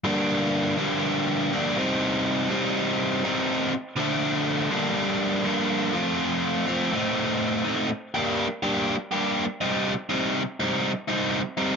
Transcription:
\new Staff \with { instrumentName = "Overdriven electric guitar" } { \time 4/4 \key g \minor \tempo 4 = 122 <g, d g bes d'>4. <g, d g bes d'>4. <g, d g bes d'>8 <c g c' ees'>8~ | <c g c' ees'>4 <c g c' ees'>4. <c g c' ees'>4 r8 | <d f a d'>4. <g, d g bes d'>4. <g, d g bes d'>4 | <f a c' f'>4. <f a c' f'>8 <a, a c' ees'>4. <a, a c' ees'>8 |
r8 <g bes d' g'>8 r8 <g bes d' g'>8 r8 <g bes d' g'>8 r8 <c g c' ees'>8 | r8 <c g c' ees'>8 r8 <c g c' ees'>8 r8 <c g c' ees'>8 r8 <c g c' ees'>8 | }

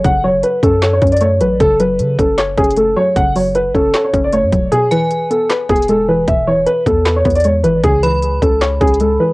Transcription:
<<
  \new Staff \with { instrumentName = "Synth bell" } { \time 4/4 \key fis \minor \tempo 4 = 154 r1 | r1 | r1 | r8 gis''2.~ gis''8 |
r1 | r8 b''2.~ b''8 | }
  \new Staff \with { instrumentName = "Grand piano" } { \time 4/4 \key fis \minor fis''8 cis''8 b'8 a'8. cis''8 d''16 cis''8 b'8 | a'8 b'4 a'8 r8 gis'8 a'8 cis''8 | fis''8 cis''8 b'8 a'8. cis''8 d''16 cis''4 | gis'8 b'4 a'8 r8 gis'8 a'8 b'8 |
e''8 cis''8 b'8 a'8. cis''8 d''16 cis''8 b'8 | gis'8 b'4 a'8 r8 gis'8 a'8 b'8 | }
  \new Staff \with { instrumentName = "Synth pluck" } { \time 4/4 \key fis \minor <cis fis a cis' cis''>8 fis4 cis'8 cis''8 cis'8 a8 fis8 | cis8 fis4 cis'8 cis''8 cis'8 a8 fis8 | cis8 fis4 cis'8 cis''8 cis'8 a8 fis8 | b,8 e4 b8 b'8 b8 gis8 e8 |
b,8 e4 b8 b'8 b8 gis8 e8 | cis8 e4 cis'8 cis''8 cis'8 gis8 e8 | }
  \new Staff \with { instrumentName = "808-style bass" } { \clef bass \time 4/4 \key fis \minor fis,,8 e,,16 fis,,16 r8 fis,4 fis,4 a,,8 | fis,,4 cis8 fis,,4 fis,,4 r8 | fis,,4. fis,,8 r8 fis,,8. fis,16 e,,8 | r2 r8 e,,4. |
e,,8 d,,16 e,,16 r8 e,4 e,4 gis,,8 | cis,4. cis,4 cis,4 r8 | }
  \new DrumStaff \with { instrumentName = "Drums" } \drummode { \time 4/4 <hh bd>4 hh8 <hh bd>8 <hc hh sn>8 <hh bd>32 hh32 hh32 hh32 hh8 hh8 | <hh bd>8 hh8 hh8 <hh bd>8 \tuplet 3/2 { <hc hh sn>16 r16 r16 <hh bd>16 hh16 hh16 } hh4 | <hh bd>8 hho8 hh8 <hh bd>8 <hc hh sn>8 <hh bd>8 hh8 <hh bd>8 | hh8 hh8 hh8 hh8 \tuplet 3/2 { <hc hh sn>16 r16 r16 <hh bd>16 hh16 hh16 } hh4 |
<hh bd>4 hh8 <hh bd>8 <hc hh sn>8 <hh bd>32 hh32 hh32 hh32 hh8 hh8 | <hh bd>8 hh8 hh8 <hh bd>8 \tuplet 3/2 { <hc hh sn>16 r16 r16 <hh bd>16 hh16 hh16 } hh4 | }
>>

